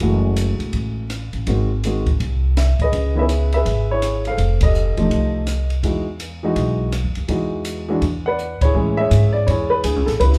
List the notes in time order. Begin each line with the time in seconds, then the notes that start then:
0.00 F#1 E3 G#3 A3 F#4, kick, ride
0.36 hi-hat pedal, ride
0.59 E1, ride
0.73 A1, kick, ride
1.10 cross-stick, hi-hat pedal, ride
1.33 A1, ride
1.47 G#1 D#3 G#3 C4 F#4, kick, ride
1.84 D#3 G#3 C4 F#4, hi-hat pedal, ride
2.06 kick, ride
2.20 C2, kick, ride
2.57 E5, cross-stick, snare, hi-hat pedal, ride
2.79 D#5, muted upright bass stroke, kick, ride
2.84 G#4 B4
2.92 C#2, kick, ride
3.15 D#3 B3 C#4 E4 E5
3.21 G#4 B4
3.29 hi-hat pedal, ride
3.52 G#4 B4 E5, ride
3.65 G#1, kick, ride
3.91 E4 G#4 C#5
4.02 cross-stick, hi-hat pedal, ride
4.25 F5, ride
4.29 A4 C5
4.38 F1, kick, ride
4.61 G4 A4 D#5, kick, ride
4.74 hi-hat pedal
4.97 E1 F3 A3 D#4 G4, ride
5.11 C2, kick, ride
5.47 cross-stick, hi-hat pedal, ride
5.70 ride
5.83 E2 E3 G#3 D#4 F#4, kick, ride
6.20 hi-hat pedal, ride
6.43 E3 G#3 D#4 F#4
6.56 B1, kick, ride
6.92 cross-stick, hi-hat pedal, ride
7.04 E2
7.15 D#2, ride
7.28 E2 E3 G#3 D#4 F#4, kick, ride
7.65 hi-hat pedal, ride
7.88 E3 G#3 D4 F#4
8.01 E2, kick, ride
8.26 B4 D5 F#5
8.38 hi-hat pedal
8.61 E4 G#4 C#5, muted upright bass stroke, kick, ride
8.75 A2 E3 G#3 C#4 G#4
8.97 G#4 C#5 E5
9.11 G#2, kick, hi-hat pedal, ride
9.33 D5
9.47 E2 E4 G#4 C#5, kick, ride
9.70 B4
9.84 D2 G#4, kick, hi-hat pedal, ride
9.96 C#2
10.06 A1 A4, snare
10.20 C#2 E4 G4 B4, kick, ride
10.33 snare